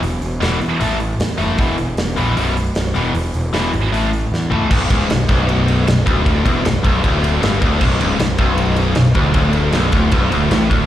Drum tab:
CC |----------------|----------------|----------------|x---------------|
RD |----------------|----------------|----------------|--x-x-x-x-x-x-x-|
HH |o-o-o-o-o-o-o-o-|o-o-o-o-o-o-o-o-|o-o-o-o-o-o-----|----------------|
SD |----o-------o---|----oo------oo--|----o-------o---|----o-o-----o---|
FT |----------------|----------------|--------------o-|----------------|
BD |----------------|o---------------|----------------|o-o---o-------o-|

CC |----------------|x---------------|----------------|
RD |x-x-x-x-x-x-x-x-|--x-x-x-x-x-x-x-|x-x-x-x-x-x-x-x-|
HH |----------------|----------------|----------------|
SD |----o-------o---|----o-------o---|----o-o-----o---|
FT |----------------|----------------|----------------|
BD |o-o---o-o-----o-|o-----o-------o-|o-----o-o-----o-|